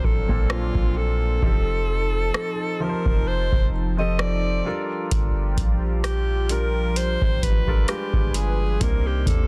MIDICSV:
0, 0, Header, 1, 6, 480
1, 0, Start_track
1, 0, Tempo, 923077
1, 740, Time_signature, 4, 2, 24, 8
1, 4926, End_track
2, 0, Start_track
2, 0, Title_t, "Alto saxophone"
2, 0, Program_c, 0, 65
2, 25, Note_on_c, 0, 69, 82
2, 265, Note_on_c, 0, 65, 89
2, 273, Note_off_c, 0, 69, 0
2, 504, Note_on_c, 0, 69, 103
2, 512, Note_off_c, 0, 65, 0
2, 1467, Note_on_c, 0, 70, 100
2, 1474, Note_off_c, 0, 69, 0
2, 1703, Note_on_c, 0, 72, 103
2, 1711, Note_off_c, 0, 70, 0
2, 1923, Note_off_c, 0, 72, 0
2, 2075, Note_on_c, 0, 75, 94
2, 2184, Note_on_c, 0, 74, 100
2, 2192, Note_off_c, 0, 75, 0
2, 2552, Note_off_c, 0, 74, 0
2, 3143, Note_on_c, 0, 67, 93
2, 3384, Note_on_c, 0, 70, 104
2, 3392, Note_off_c, 0, 67, 0
2, 3625, Note_on_c, 0, 72, 114
2, 3633, Note_off_c, 0, 70, 0
2, 3861, Note_on_c, 0, 71, 94
2, 3869, Note_off_c, 0, 72, 0
2, 4099, Note_off_c, 0, 71, 0
2, 4102, Note_on_c, 0, 67, 90
2, 4345, Note_on_c, 0, 68, 89
2, 4353, Note_off_c, 0, 67, 0
2, 4585, Note_on_c, 0, 70, 93
2, 4593, Note_off_c, 0, 68, 0
2, 4715, Note_on_c, 0, 67, 81
2, 4723, Note_off_c, 0, 70, 0
2, 4819, Note_off_c, 0, 67, 0
2, 4822, Note_on_c, 0, 69, 90
2, 4926, Note_off_c, 0, 69, 0
2, 4926, End_track
3, 0, Start_track
3, 0, Title_t, "Analog synth pad"
3, 0, Program_c, 1, 89
3, 0, Note_on_c, 1, 54, 80
3, 0, Note_on_c, 1, 58, 80
3, 0, Note_on_c, 1, 62, 84
3, 719, Note_off_c, 1, 54, 0
3, 719, Note_off_c, 1, 58, 0
3, 719, Note_off_c, 1, 62, 0
3, 737, Note_on_c, 1, 81, 85
3, 738, Note_on_c, 1, 53, 76
3, 738, Note_on_c, 1, 63, 69
3, 2402, Note_off_c, 1, 53, 0
3, 2402, Note_off_c, 1, 63, 0
3, 2402, Note_off_c, 1, 81, 0
3, 2421, Note_on_c, 1, 53, 84
3, 2421, Note_on_c, 1, 65, 74
3, 2421, Note_on_c, 1, 67, 88
3, 4084, Note_off_c, 1, 67, 0
3, 4098, Note_on_c, 1, 71, 86
3, 4098, Note_on_c, 1, 80, 74
3, 4560, Note_off_c, 1, 53, 0
3, 4560, Note_off_c, 1, 65, 0
3, 4574, Note_off_c, 1, 71, 0
3, 4575, Note_off_c, 1, 80, 0
3, 4578, Note_on_c, 1, 51, 81
3, 4579, Note_on_c, 1, 48, 81
3, 4579, Note_on_c, 1, 58, 68
3, 4579, Note_on_c, 1, 74, 69
3, 4926, Note_off_c, 1, 48, 0
3, 4926, Note_off_c, 1, 51, 0
3, 4926, Note_off_c, 1, 58, 0
3, 4926, Note_off_c, 1, 74, 0
3, 4926, End_track
4, 0, Start_track
4, 0, Title_t, "Grand piano"
4, 0, Program_c, 2, 0
4, 0, Control_c, 2, 64, 127
4, 0, Note_on_c, 2, 46, 64
4, 0, Note_on_c, 2, 58, 62
4, 0, Note_on_c, 2, 60, 66
4, 0, Note_on_c, 2, 62, 61
4, 0, Note_on_c, 2, 70, 79
4, 147, Note_off_c, 2, 46, 0
4, 147, Note_on_c, 2, 46, 69
4, 151, Note_off_c, 2, 58, 0
4, 151, Note_on_c, 2, 58, 65
4, 153, Note_off_c, 2, 60, 0
4, 153, Note_on_c, 2, 60, 63
4, 157, Note_off_c, 2, 62, 0
4, 157, Note_on_c, 2, 62, 63
4, 161, Note_on_c, 2, 69, 74
4, 608, Note_off_c, 2, 46, 0
4, 610, Note_off_c, 2, 58, 0
4, 611, Note_off_c, 2, 60, 0
4, 613, Note_off_c, 2, 62, 0
4, 615, Note_off_c, 2, 69, 0
4, 738, Note_on_c, 2, 53, 67
4, 741, Note_on_c, 2, 60, 64
4, 745, Note_on_c, 2, 63, 66
4, 747, Control_c, 2, 64, 0
4, 748, Note_on_c, 2, 67, 61
4, 751, Note_off_c, 2, 70, 0
4, 752, Note_on_c, 2, 69, 75
4, 838, Control_c, 2, 64, 127
4, 1298, Note_off_c, 2, 53, 0
4, 1300, Note_off_c, 2, 60, 0
4, 1302, Note_off_c, 2, 63, 0
4, 1303, Note_off_c, 2, 67, 0
4, 1305, Note_off_c, 2, 69, 0
4, 1456, Note_on_c, 2, 53, 70
4, 1460, Note_on_c, 2, 60, 62
4, 1463, Note_on_c, 2, 63, 63
4, 1466, Note_on_c, 2, 67, 64
4, 1471, Note_on_c, 2, 70, 58
4, 1502, Note_off_c, 2, 70, 0
4, 1505, Note_on_c, 2, 72, 75
4, 1921, Note_off_c, 2, 53, 0
4, 1923, Note_off_c, 2, 60, 0
4, 1924, Note_off_c, 2, 63, 0
4, 1926, Note_off_c, 2, 67, 0
4, 1945, Note_off_c, 2, 72, 0
4, 2066, Note_on_c, 2, 53, 70
4, 2071, Note_on_c, 2, 60, 63
4, 2073, Note_on_c, 2, 63, 69
4, 2078, Note_on_c, 2, 67, 66
4, 2081, Note_on_c, 2, 69, 79
4, 2415, Note_on_c, 2, 55, 80
4, 2418, Note_off_c, 2, 53, 0
4, 2419, Note_off_c, 2, 69, 0
4, 2419, Note_on_c, 2, 62, 70
4, 2421, Note_off_c, 2, 60, 0
4, 2422, Note_off_c, 2, 63, 0
4, 2423, Note_on_c, 2, 65, 72
4, 2424, Note_off_c, 2, 67, 0
4, 2427, Control_c, 2, 64, 0
4, 2427, Note_on_c, 2, 69, 76
4, 2431, Note_on_c, 2, 70, 86
4, 2531, Control_c, 2, 64, 127
4, 3190, Note_off_c, 2, 55, 0
4, 3192, Note_off_c, 2, 62, 0
4, 3194, Note_off_c, 2, 65, 0
4, 3195, Note_off_c, 2, 69, 0
4, 3197, Note_off_c, 2, 70, 0
4, 3376, Note_on_c, 2, 55, 70
4, 3380, Note_on_c, 2, 62, 63
4, 3384, Note_on_c, 2, 65, 60
4, 3388, Note_on_c, 2, 67, 60
4, 3391, Note_on_c, 2, 70, 79
4, 3841, Note_off_c, 2, 55, 0
4, 3843, Note_off_c, 2, 62, 0
4, 3844, Note_off_c, 2, 65, 0
4, 3847, Note_off_c, 2, 67, 0
4, 3848, Note_off_c, 2, 70, 0
4, 3984, Note_on_c, 2, 55, 74
4, 3989, Note_on_c, 2, 62, 65
4, 3992, Note_on_c, 2, 65, 69
4, 3996, Note_on_c, 2, 69, 69
4, 3999, Note_on_c, 2, 70, 80
4, 4086, Note_off_c, 2, 55, 0
4, 4090, Note_off_c, 2, 62, 0
4, 4093, Note_off_c, 2, 65, 0
4, 4093, Note_on_c, 2, 55, 77
4, 4098, Note_on_c, 2, 62, 68
4, 4101, Note_on_c, 2, 65, 71
4, 4104, Note_off_c, 2, 69, 0
4, 4105, Note_off_c, 2, 70, 0
4, 4105, Note_on_c, 2, 56, 68
4, 4106, Control_c, 2, 64, 0
4, 4108, Note_on_c, 2, 71, 83
4, 4208, Control_c, 2, 64, 127
4, 4489, Note_off_c, 2, 55, 0
4, 4491, Note_off_c, 2, 62, 0
4, 4492, Note_off_c, 2, 65, 0
4, 4494, Note_off_c, 2, 56, 0
4, 4496, Note_off_c, 2, 71, 0
4, 4574, Note_on_c, 2, 48, 68
4, 4578, Note_on_c, 2, 60, 63
4, 4581, Note_on_c, 2, 62, 60
4, 4585, Note_on_c, 2, 63, 62
4, 4587, Control_c, 2, 64, 0
4, 4588, Note_on_c, 2, 58, 82
4, 4668, Control_c, 2, 64, 127
4, 4926, Note_off_c, 2, 48, 0
4, 4926, Note_off_c, 2, 58, 0
4, 4926, Note_off_c, 2, 60, 0
4, 4926, Note_off_c, 2, 62, 0
4, 4926, Note_off_c, 2, 63, 0
4, 4926, End_track
5, 0, Start_track
5, 0, Title_t, "808-style bass"
5, 0, Program_c, 3, 38
5, 0, Note_on_c, 3, 34, 93
5, 372, Note_off_c, 3, 34, 0
5, 389, Note_on_c, 3, 34, 99
5, 726, Note_off_c, 3, 34, 0
5, 740, Note_on_c, 3, 29, 110
5, 1201, Note_off_c, 3, 29, 0
5, 1590, Note_on_c, 3, 29, 98
5, 1820, Note_off_c, 3, 29, 0
5, 1832, Note_on_c, 3, 29, 93
5, 2401, Note_off_c, 3, 29, 0
5, 2660, Note_on_c, 3, 31, 110
5, 2891, Note_off_c, 3, 31, 0
5, 2898, Note_on_c, 3, 34, 100
5, 3728, Note_off_c, 3, 34, 0
5, 3753, Note_on_c, 3, 31, 94
5, 4088, Note_off_c, 3, 31, 0
5, 4230, Note_on_c, 3, 31, 103
5, 4566, Note_off_c, 3, 31, 0
5, 4581, Note_on_c, 3, 36, 112
5, 4811, Note_off_c, 3, 36, 0
5, 4817, Note_on_c, 3, 39, 96
5, 4926, Note_off_c, 3, 39, 0
5, 4926, End_track
6, 0, Start_track
6, 0, Title_t, "Drums"
6, 21, Note_on_c, 9, 36, 90
6, 73, Note_off_c, 9, 36, 0
6, 150, Note_on_c, 9, 36, 94
6, 202, Note_off_c, 9, 36, 0
6, 259, Note_on_c, 9, 37, 107
6, 311, Note_off_c, 9, 37, 0
6, 388, Note_on_c, 9, 36, 83
6, 440, Note_off_c, 9, 36, 0
6, 739, Note_on_c, 9, 36, 103
6, 791, Note_off_c, 9, 36, 0
6, 1219, Note_on_c, 9, 37, 106
6, 1271, Note_off_c, 9, 37, 0
6, 1589, Note_on_c, 9, 36, 97
6, 1641, Note_off_c, 9, 36, 0
6, 1832, Note_on_c, 9, 36, 88
6, 1884, Note_off_c, 9, 36, 0
6, 2179, Note_on_c, 9, 37, 111
6, 2231, Note_off_c, 9, 37, 0
6, 2659, Note_on_c, 9, 42, 66
6, 2660, Note_on_c, 9, 36, 99
6, 2711, Note_off_c, 9, 42, 0
6, 2712, Note_off_c, 9, 36, 0
6, 2897, Note_on_c, 9, 36, 86
6, 2900, Note_on_c, 9, 42, 57
6, 2949, Note_off_c, 9, 36, 0
6, 2952, Note_off_c, 9, 42, 0
6, 3141, Note_on_c, 9, 37, 100
6, 3141, Note_on_c, 9, 42, 63
6, 3193, Note_off_c, 9, 37, 0
6, 3193, Note_off_c, 9, 42, 0
6, 3377, Note_on_c, 9, 42, 66
6, 3429, Note_off_c, 9, 42, 0
6, 3621, Note_on_c, 9, 42, 63
6, 3673, Note_off_c, 9, 42, 0
6, 3752, Note_on_c, 9, 36, 89
6, 3804, Note_off_c, 9, 36, 0
6, 3862, Note_on_c, 9, 36, 91
6, 3864, Note_on_c, 9, 42, 61
6, 3914, Note_off_c, 9, 36, 0
6, 3916, Note_off_c, 9, 42, 0
6, 3990, Note_on_c, 9, 36, 95
6, 4042, Note_off_c, 9, 36, 0
6, 4098, Note_on_c, 9, 42, 64
6, 4101, Note_on_c, 9, 37, 110
6, 4150, Note_off_c, 9, 42, 0
6, 4153, Note_off_c, 9, 37, 0
6, 4229, Note_on_c, 9, 36, 85
6, 4281, Note_off_c, 9, 36, 0
6, 4339, Note_on_c, 9, 42, 75
6, 4391, Note_off_c, 9, 42, 0
6, 4580, Note_on_c, 9, 36, 100
6, 4581, Note_on_c, 9, 42, 67
6, 4632, Note_off_c, 9, 36, 0
6, 4633, Note_off_c, 9, 42, 0
6, 4817, Note_on_c, 9, 36, 90
6, 4820, Note_on_c, 9, 42, 52
6, 4869, Note_off_c, 9, 36, 0
6, 4872, Note_off_c, 9, 42, 0
6, 4926, End_track
0, 0, End_of_file